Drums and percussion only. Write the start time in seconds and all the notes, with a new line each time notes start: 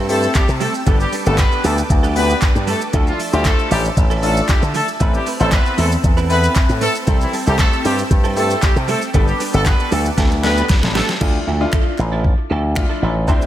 0.09 open hi-hat, shaker
0.23 shaker
0.35 kick, clap, closed hi-hat, shaker
0.49 shaker
0.60 open hi-hat, shaker
0.74 shaker
0.87 kick, closed hi-hat, shaker
1.00 shaker
1.13 open hi-hat, shaker
1.26 shaker
1.38 kick, clap, closed hi-hat, shaker
1.52 shaker
1.64 open hi-hat, shaker
1.78 shaker
1.90 kick, closed hi-hat, shaker
2.04 shaker
2.16 open hi-hat, shaker
2.30 shaker
2.42 kick, clap, closed hi-hat, shaker
2.55 shaker
2.67 open hi-hat, shaker
2.81 shaker
2.93 kick, closed hi-hat, shaker
3.07 shaker
3.20 open hi-hat, shaker
3.33 shaker
3.45 kick, clap, closed hi-hat, shaker
3.59 shaker
3.71 open hi-hat, shaker
3.85 shaker
3.97 kick, closed hi-hat, shaker
4.11 shaker
4.23 open hi-hat, shaker
4.37 shaker
4.49 kick, clap, closed hi-hat, shaker
4.62 shaker
4.74 open hi-hat, shaker
4.88 shaker
5.00 kick, closed hi-hat, shaker
5.14 shaker
5.26 open hi-hat, shaker
5.40 shaker
5.52 kick, clap, closed hi-hat, shaker
5.66 shaker
5.78 open hi-hat, shaker
5.92 shaker
6.04 kick, closed hi-hat, shaker
6.17 shaker
6.30 open hi-hat, shaker
6.44 shaker
6.55 kick, clap, closed hi-hat, shaker
6.69 shaker
6.81 open hi-hat, shaker
6.95 shaker
7.07 kick, closed hi-hat, shaker
7.21 shaker
7.33 open hi-hat, shaker
7.47 shaker
7.59 kick, clap, closed hi-hat, shaker
7.73 shaker
7.85 open hi-hat, shaker
7.99 shaker
8.11 kick, closed hi-hat, shaker
8.24 shaker
8.37 open hi-hat, shaker
8.50 shaker
8.62 kick, clap, closed hi-hat, shaker
8.76 shaker
8.88 open hi-hat, shaker
9.02 shaker
9.14 kick, closed hi-hat, shaker
9.28 shaker
9.40 open hi-hat, shaker
9.54 shaker
9.66 kick, clap, closed hi-hat, shaker
9.80 shaker
9.92 open hi-hat, shaker
10.05 shaker
10.18 kick, snare, closed hi-hat, shaker
10.31 shaker
10.44 snare, open hi-hat, shaker
10.57 shaker
10.69 kick, snare, clap, closed hi-hat, shaker
10.83 snare, shaker
10.95 snare, open hi-hat, shaker
11.09 snare, shaker
11.21 kick, crash
11.73 finger snap, kick, clap
11.98 clap
12.24 kick
12.76 finger snap, kick, clap
13.28 kick, shaker
13.42 shaker